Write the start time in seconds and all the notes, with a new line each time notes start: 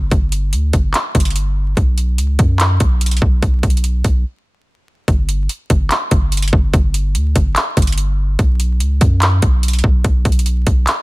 Already playing: G1
0.11 G1, kick, closed hi-hat
0.32 closed hi-hat
0.53 D2, closed hi-hat
0.73 G1, kick, closed hi-hat
0.94 clap, closed hi-hat
1.15 G1, kick, closed hi-hat
1.20 closed hi-hat
1.25 closed hi-hat
1.30 closed hi-hat
1.36 closed hi-hat
1.77 B1, kick, closed hi-hat
1.98 closed hi-hat
2.18 C#2, closed hi-hat
2.39 F#2, kick, closed hi-hat
2.60 clap, closed hi-hat
2.80 B1, kick, closed hi-hat
3.01 closed hi-hat
3.06 closed hi-hat
3.11 closed hi-hat
3.17 closed hi-hat
3.22 B1, kick
3.42 B1, kick, closed hi-hat
3.63 B1, kick, closed hi-hat
3.70 closed hi-hat
3.77 closed hi-hat
3.84 closed hi-hat
4.04 B1, kick, closed hi-hat
5.08 G1, kick, closed hi-hat
5.29 closed hi-hat
5.49 closed hi-hat
5.70 G1, kick, closed hi-hat
5.91 clap, closed hi-hat
6.11 G1, kick, closed hi-hat
6.32 closed hi-hat
6.37 closed hi-hat
6.42 closed hi-hat
6.48 closed hi-hat
6.53 G1, kick
6.74 G1, kick, closed hi-hat
6.94 closed hi-hat
7.15 D2, closed hi-hat
7.35 G1, kick, closed hi-hat
7.56 clap, closed hi-hat
7.77 G1, kick, closed hi-hat
7.82 closed hi-hat
7.87 closed hi-hat
7.92 closed hi-hat
7.98 closed hi-hat
8.39 B1, kick, closed hi-hat
8.60 closed hi-hat
8.80 C#2, closed hi-hat
9.01 F#2, kick, closed hi-hat
9.22 clap, closed hi-hat
9.42 B1, kick, closed hi-hat
9.63 closed hi-hat
9.68 closed hi-hat
9.73 closed hi-hat
9.79 closed hi-hat
9.84 B1, kick
10.04 B1, kick, closed hi-hat
10.25 B1, kick, closed hi-hat
10.32 closed hi-hat
10.39 closed hi-hat
10.46 closed hi-hat
10.67 B1, kick, closed hi-hat
10.87 clap, closed hi-hat